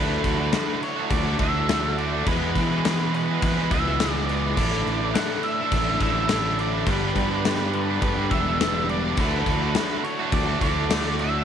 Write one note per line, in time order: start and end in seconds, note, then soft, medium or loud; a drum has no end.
0.00 0.23 D2 medium
0.00 0.24 D3 medium
0.00 0.50 D3 medium
0.00 0.24 F#3 medium
0.00 1.38 F#3 medium
0.00 0.24 A3 medium
0.00 0.40 A3 medium
0.00 2.24 A3 medium
0.00 0.22 D4 medium
0.00 0.38 D4 loud
0.00 0.22 E4 medium
0.00 2.24 E4 medium
0.00 0.37 F#4 loud
0.00 2.24 F#4 medium
0.00 0.21 A4 loud
0.00 0.86 B4 medium
0.00 2.25 D5 medium
0.22 0.52 D2 medium
0.22 0.51 A3 soft
0.22 0.52 D4 soft
0.22 0.51 E4 medium
0.22 0.52 A4 medium
0.22 kick medium
0.22 crash medium
0.38 0.51 A3 medium
0.38 0.53 D4 medium
0.38 0.54 F#4 medium
0.51 1.10 D3 medium
0.51 0.81 D3 loud
0.51 1.15 F#3 medium
0.51 1.09 A3 medium
0.51 0.69 A3 loud
0.51 1.10 D4 medium
0.51 0.68 D4 loud
0.51 1.11 E4 medium
0.51 0.66 F#4 loud
0.51 1.11 A4 medium
0.51 snare loud
0.51 crash medium
0.67 0.81 A3 medium
0.67 0.81 D4 medium
0.67 0.82 F#4 medium
0.80 1.66 D3 medium
0.80 1.67 A3 medium
0.80 1.66 D4 medium
0.80 1.66 F#4 medium
0.80 1.12 C#5 medium
0.80 muted overdriven electric guitar stroke soft
0.80 crash medium
0.97 1.27 A3 medium
0.97 1.26 D4 medium
0.97 1.24 F#4 medium
1.10 1.38 D2 medium
1.10 1.40 A3 soft
1.10 1.40 D4 medium
1.10 1.40 E4 medium
1.10 1.37 A4 medium
1.10 1.39 D5 loud
1.10 kick loud
1.10 crash medium
1.25 1.39 A3 medium
1.25 1.41 D4 medium
1.25 1.42 F#4 medium
1.38 2.23 D2 medium
1.38 1.67 D3 medium
1.38 1.67 F#3 medium
1.38 1.68 A3 medium
1.38 1.69 A3 soft
1.38 1.70 D4 soft
1.38 1.69 D4 medium
1.38 1.70 E4 medium
1.38 1.68 A4 medium
1.38 1.94 E5 medium
1.38 kick medium
1.38 crash medium
1.43 1.66 D3 medium
1.43 1.71 F#4 medium
1.68 1.97 D3 medium
1.68 1.98 D3 medium
1.68 2.25 F#3 medium
1.68 1.99 F#3 medium
1.68 1.86 A3 medium
1.68 1.99 A3 medium
1.68 1.84 D4 loud
1.68 1.97 D4 medium
1.68 1.96 E4 medium
1.68 1.82 F#4 medium
1.68 1.95 A4 medium
1.68 snare loud
1.68 crash medium
1.83 1.99 D4 medium
1.83 2.01 F#4 medium
1.87 1.98 A3 medium
1.96 2.25 D3 medium
1.96 2.15 A3 medium
1.96 2.26 A3 soft
1.96 2.26 D4 soft
1.96 2.25 E4 soft
1.96 2.26 A4 medium
1.96 2.25 D5 loud
1.96 crash medium
2.01 2.13 D4 medium
2.01 2.11 F#4 medium
2.12 2.27 A3 medium
2.12 2.26 D4 medium
2.12 2.25 F#4 medium
2.25 2.85 E2 medium
2.25 2.54 E2 medium
2.25 2.86 B2 loud
2.25 2.55 E3 medium
2.25 2.75 E3 loud
2.25 2.55 F#3 medium
2.25 4.55 G#3 medium
2.25 2.55 B3 medium
2.25 2.56 E4 medium
2.25 4.55 E4 medium
2.25 3.70 E4 medium
2.25 4.55 F#4 medium
2.25 2.56 G#4 medium
2.25 4.55 B4 medium
2.25 3.14 B4 medium
2.25 2.53 E5 medium
2.25 kick loud
2.25 crash medium
2.29 2.72 G#3 loud
2.29 2.72 B3 loud
2.29 2.71 G#4 loud
2.55 3.38 E3 medium
2.55 2.84 B3 medium
2.55 2.84 E4 soft
2.55 2.84 G#4 medium
2.55 2.84 E5 medium
2.55 kick medium
2.55 crash medium
2.72 2.88 E3 medium
2.72 2.88 G#3 medium
2.72 2.88 B3 medium
2.72 2.88 G#4 medium
2.84 3.29 E2 loud
2.84 3.29 B2 loud
2.84 3.98 E3 medium
2.84 3.42 F#3 medium
2.84 3.39 B3 medium
2.84 3.41 E4 medium
2.84 3.42 G#4 medium
2.84 3.43 E5 medium
2.84 snare loud
2.84 crash medium
2.88 3.03 E3 loud
2.88 3.01 G#3 loud
2.88 3.01 B3 loud
2.88 2.99 G#4 loud
3.00 3.15 E3 medium
3.00 3.14 G#3 medium
3.00 3.14 B3 medium
3.00 3.15 G#4 medium
3.13 3.98 E2 medium
3.13 3.99 B2 medium
3.13 3.98 E3 medium
3.13 3.98 G#3 medium
3.13 3.98 B3 medium
3.13 3.98 G#4 medium
3.13 3.43 B4 medium
3.13 muted overdriven electric guitar stroke soft
3.13 crash medium
3.28 3.60 E3 medium
3.28 3.58 G#3 medium
3.28 3.57 B3 medium
3.28 3.57 G#4 medium
3.41 3.69 E3 medium
3.41 3.70 B3 medium
3.41 3.71 E4 medium
3.41 3.70 G#4 medium
3.41 3.70 B4 medium
3.41 3.69 E5 medium
3.41 kick loud
3.41 crash medium
3.58 3.70 E3 medium
3.58 3.72 G#3 medium
3.58 3.74 B3 medium
3.58 3.74 G#4 medium
3.70 4.53 C#2 medium
3.70 4.01 E3 medium
3.70 4.02 G#3 medium
3.70 3.99 B3 soft
3.70 3.98 E4 medium
3.70 3.98 E4 soft
3.70 3.99 G#4 soft
3.70 3.99 E5 soft
3.70 4.13 E5 medium
3.70 kick medium
3.70 crash medium
3.75 4.02 B3 medium
3.75 4.03 G#4 medium
3.99 4.44 E2 loud
3.99 4.44 B2 loud
3.99 4.28 E3 medium
3.99 4.16 E3 loud
3.99 4.28 F#3 medium
3.99 4.29 B3 medium
3.99 4.28 E4 medium
3.99 4.57 E4 medium
3.99 4.28 G#4 loud
3.99 4.27 E5 loud
3.99 snare loud
3.99 crash medium
4.03 4.15 G#3 loud
4.03 4.14 B3 loud
4.03 4.13 G#4 loud
4.13 4.27 E3 medium
4.13 4.29 G#3 medium
4.13 4.30 B3 medium
4.13 4.31 G#4 medium
4.13 4.25 D5 medium
4.27 4.44 E3 medium
4.27 4.43 G#3 medium
4.27 4.58 E4 medium
4.27 4.58 G#4 soft
4.27 4.54 D5 medium
4.27 4.57 E5 medium
4.27 crash medium
4.31 4.42 B3 medium
4.31 4.58 B3 soft
4.31 4.41 G#4 medium
4.42 4.57 E3 medium
4.42 4.56 G#3 medium
4.42 4.56 B3 medium
4.42 4.55 G#4 medium
4.55 4.84 A1 loud
4.55 5.14 A2 medium
4.55 4.86 A2 medium
4.55 4.86 D3 medium
4.55 5.15 D3 loud
4.55 6.00 E3 medium
4.55 5.04 A3 medium
4.55 4.87 A3 medium
4.55 4.87 A4 medium
4.55 5.16 D5 loud
4.55 4.85 D5 medium
4.55 kick loud
4.55 crash medium
4.60 6.86 A3 medium
4.60 5.03 D4 loud
4.60 6.86 D4 medium
4.60 4.87 E4 medium
4.60 6.86 E4 medium
4.60 5.00 E4 loud
4.60 6.85 D5 medium
4.86 5.13 A1 medium
4.86 5.13 A3 soft
4.86 5.14 E4 soft
4.86 5.14 A4 medium
4.86 5.15 D5 medium
4.86 crash medium
5.01 5.15 A3 medium
5.01 5.17 D4 medium
5.01 5.17 E4 medium
5.14 5.72 A2 medium
5.14 5.58 A2 loud
5.14 5.72 D3 medium
5.14 5.44 D3 loud
5.14 5.68 A3 medium
5.14 5.32 A3 loud
5.14 5.70 E4 medium
5.14 5.70 A4 medium
5.14 5.71 D5 medium
5.14 5.44 F#5 loud
5.14 snare loud
5.14 crash medium
5.18 5.32 D4 medium
5.18 5.29 E4 loud
5.30 5.45 A3 medium
5.30 5.45 D4 medium
5.30 5.45 E4 medium
5.42 6.26 A2 medium
5.42 6.28 D3 medium
5.42 6.28 A3 medium
5.42 6.29 D4 medium
5.42 6.27 E4 medium
5.42 6.01 E5 loud
5.42 muted overdriven electric guitar stroke medium
5.42 crash medium
5.61 5.90 A3 medium
5.61 5.89 D4 medium
5.61 5.86 E4 medium
5.70 5.99 A1 medium
5.70 6.00 A3 medium
5.70 6.01 E4 medium
5.70 6.01 A4 medium
5.70 6.00 D5 medium
5.70 kick loud
5.70 crash medium
5.87 6.01 A3 medium
5.87 6.03 D4 medium
5.87 6.03 E4 medium
6.00 6.83 A1 medium
6.00 6.27 A2 medium
6.00 6.28 D3 medium
6.00 6.28 E3 medium
6.00 6.29 A3 medium
6.00 6.30 D4 medium
6.00 6.27 E4 medium
6.00 6.29 E4 soft
6.00 6.28 A4 soft
6.00 6.29 D5 medium
6.00 6.55 E5 loud
6.00 kick medium
6.00 crash medium
6.04 6.28 A3 soft
6.04 6.30 E4 medium
6.28 6.72 A2 loud
6.28 6.58 A2 medium
6.28 6.58 D3 medium
6.28 6.57 D3 medium
6.28 6.86 E3 medium
6.28 6.58 A3 medium
6.28 6.46 A3 loud
6.28 6.46 D4 medium
6.28 6.59 E4 medium
6.28 6.43 E4 loud
6.28 6.58 A4 medium
6.28 6.57 D5 medium
6.28 snare loud
6.28 crash medium
6.44 6.59 A3 medium
6.44 6.61 D4 medium
6.44 6.61 E4 medium
6.59 6.86 D3 medium
6.59 6.76 A3 medium
6.59 6.86 A3 soft
6.59 6.75 D4 medium
6.59 6.86 E4 soft
6.59 6.72 E4 medium
6.59 6.87 A4 medium
6.59 6.87 D5 medium
6.59 6.89 D5 medium
6.59 crash medium
6.73 6.88 A3 medium
6.73 6.90 D4 medium
6.73 6.86 E4 medium
6.86 7.14 G1 medium
6.86 7.43 G2 medium
6.86 7.44 D3 medium
6.86 7.15 G3 medium
6.86 7.33 G3 loud
6.86 7.15 B3 medium
6.86 9.15 B3 medium
6.86 9.15 D4 medium
6.86 7.16 D4 medium
6.86 9.15 G4 medium
6.86 7.14 G4 medium
6.86 7.69 B4 medium
6.86 7.12 B4 loud
6.86 9.14 D5 medium
6.86 kick loud
6.86 crash medium
6.90 7.32 B3 loud
6.90 7.31 D4 loud
6.90 7.30 G4 loud
7.13 7.98 G2 medium
7.13 7.43 G4 soft
7.13 7.43 B4 medium
7.13 kick medium
7.13 crash medium
7.17 7.43 D4 soft
7.31 7.44 G3 medium
7.31 7.46 B3 medium
7.31 7.47 D4 medium
7.31 7.47 G4 medium
7.43 7.88 G2 medium
7.43 7.88 D3 medium
7.43 8.02 G3 medium
7.43 7.63 G3 loud
7.43 7.99 B3 medium
7.43 7.62 B3 loud
7.43 8.01 D4 medium
7.43 7.61 D4 loud
7.43 8.01 G4 medium
7.43 8.02 B4 medium
7.43 snare loud
7.43 crash medium
7.48 7.60 G4 loud
7.61 7.74 G3 medium
7.61 7.74 B3 medium
7.61 7.75 D4 medium
7.61 7.75 G4 medium
7.73 8.58 G2 medium
7.73 8.58 D3 medium
7.73 8.58 G3 medium
7.73 8.58 B3 medium
7.73 8.58 D4 medium
7.73 8.58 G4 medium
7.73 8.01 B4 medium
7.73 muted overdriven electric guitar stroke medium
7.73 crash medium
7.90 8.18 G3 medium
7.90 8.17 B3 medium
7.90 8.17 D4 medium
7.90 8.15 G4 medium
8.00 8.29 G2 loud
8.00 8.30 B3 medium
8.00 8.30 D4 medium
8.00 8.31 G4 medium
8.00 8.32 B4 medium
8.00 8.30 B4 medium
8.00 kick loud
8.00 crash medium
8.16 8.30 G3 medium
8.16 8.32 B3 medium
8.16 8.33 D4 medium
8.16 8.34 G4 medium
8.30 9.13 E1 medium
8.30 8.58 G2 medium
8.30 8.58 D3 medium
8.30 8.62 G3 medium
8.30 8.62 B3 medium
8.30 8.57 D4 medium
8.30 8.59 G4 medium
8.30 8.60 B4 medium
8.30 8.90 E5 medium
8.30 kick medium
8.30 crash medium
8.34 8.63 D4 medium
8.34 8.59 D4 soft
8.34 8.64 G4 medium
8.58 9.04 G2 medium
8.58 8.88 G3 medium
8.58 8.88 B3 medium
8.58 8.89 D4 medium
8.58 8.88 G4 medium
8.58 8.87 B4 medium
8.58 snare loud
8.58 crash medium
8.62 9.04 D3 medium
8.62 8.76 G3 loud
8.62 8.76 B3 loud
8.62 8.74 D4 medium
8.62 8.74 G4 loud
8.75 8.87 G3 medium
8.75 8.89 B3 medium
8.75 8.90 D4 medium
8.75 8.91 G4 medium
8.88 9.06 G3 medium
8.88 9.05 B3 medium
8.88 9.04 D4 medium
8.88 9.18 D4 soft
8.88 9.18 G4 soft
8.88 9.17 B4 soft
8.88 9.19 D5 loud
8.88 crash medium
8.93 9.02 G4 medium
9.04 9.17 G3 medium
9.04 9.17 B3 medium
9.04 9.16 D4 medium
9.04 9.16 G4 medium
9.17 9.44 D2 loud
9.17 9.46 D3 medium
9.17 9.75 D3 medium
9.17 10.60 F#3 medium
9.17 9.47 F#3 medium
9.17 11.44 A3 medium
9.17 9.47 A3 medium
9.17 9.65 A3 loud
9.17 9.47 D4 medium
9.17 9.63 D4 loud
9.17 9.47 E4 loud
9.17 11.44 E4 medium
9.17 11.44 F#4 medium
9.17 9.62 F#4 loud
9.17 9.46 A4 loud
9.17 10.01 B4 medium
9.17 11.44 D5 medium
9.17 kick loud
9.17 crash medium
9.46 9.73 D2 loud
9.46 9.74 A3 soft
9.46 9.76 D4 soft
9.46 9.76 E4 medium
9.46 9.75 A4 medium
9.46 kick medium
9.46 crash medium
9.62 9.77 D4 medium
9.62 9.80 F#4 medium
9.66 9.76 A3 medium
9.74 10.33 D3 medium
9.74 10.04 D3 loud
9.74 10.37 F#3 medium
9.74 10.31 A3 medium
9.74 9.93 A3 loud
9.74 10.32 D4 medium
9.74 9.91 D4 loud
9.74 10.34 E4 medium
9.74 10.33 A4 medium
9.74 snare loud
9.74 crash medium
9.80 9.90 F#4 loud
9.90 10.04 A3 medium
9.90 10.04 D4 medium
9.90 10.06 F#4 medium
10.03 10.87 D3 medium
10.03 10.88 A3 medium
10.03 10.88 D4 medium
10.03 10.88 F#4 medium
10.03 10.33 C#5 medium
10.03 muted overdriven electric guitar stroke medium
10.03 crash medium
10.20 10.49 A3 medium
10.20 10.48 D4 medium
10.20 10.46 F#4 medium
10.32 10.59 D2 medium
10.32 10.61 A3 medium
10.32 10.62 D4 medium
10.32 10.62 E4 medium
10.32 10.61 A4 medium
10.32 10.60 D5 medium
10.32 kick loud
10.32 crash medium
10.47 10.63 A3 medium
10.47 10.64 D4 medium
10.47 10.65 F#4 medium
10.61 11.43 D2 medium
10.61 10.90 D3 medium
10.61 10.89 F#3 medium
10.61 10.91 A3 medium
10.61 10.88 D4 medium
10.61 10.90 E4 medium
10.61 10.90 A4 medium
10.61 11.21 D5 medium
10.61 kick medium
10.61 crash medium
10.65 10.90 A3 soft
10.65 10.92 D4 medium
10.65 10.90 D4 soft
10.65 10.94 F#4 medium
10.90 11.19 D3 medium
10.90 11.17 D3 medium
10.90 11.19 F#3 medium
10.90 11.44 F#3 medium
10.90 11.19 A3 medium
10.90 11.08 A3 loud
10.90 11.19 D4 loud
10.90 11.06 D4 loud
10.90 11.19 E4 medium
10.90 11.44 F#4 medium
10.90 11.19 A4 loud
10.90 snare loud
10.90 crash medium
10.95 11.04 F#4 medium
11.05 11.20 D4 medium
11.05 11.21 F#4 medium
11.09 11.19 A3 medium
11.19 11.44 D3 medium
11.19 11.34 A3 medium
11.19 11.44 A3 soft
11.19 11.33 D4 medium
11.19 11.44 D4 soft
11.19 11.44 E4 medium
11.19 11.32 F#4 medium
11.19 11.44 A4 medium
11.19 11.44 E5 medium
11.19 crash medium
11.33 11.44 A3 medium
11.33 11.44 D4 medium
11.33 11.44 F#4 medium